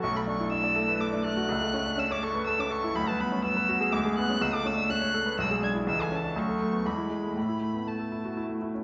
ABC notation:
X:1
M:3/4
L:1/16
Q:1/4=123
K:A
V:1 name="Violin"
c' b c'2 e'4 d'2 f'2- | f'4 e' d' c'2 e' d' c'2 | b a b2 e'4 d'2 f'2 | e' d' e'2 f'4 e'2 g'2 |
e' g a2 c'4 b4 | b4 a4 z4 |]
V:2 name="Grand piano"
B,,, A D E D d A B A D A F | C,, A C D C c A B A C A E | D,, B B, C B, B F G D,, G B, C | C,, A C D C c A B B,,, G D E |
C,, A C D D,, A A, B, E,, E G, A, | A,, E A, B, A, A E F E A, E C |]
V:3 name="Cello" clef=bass
A,12- | A,12 | F,8 G,4 | A,8 G,4 |
E,4 F,4 G,4 | A,4 A,6 z2 |]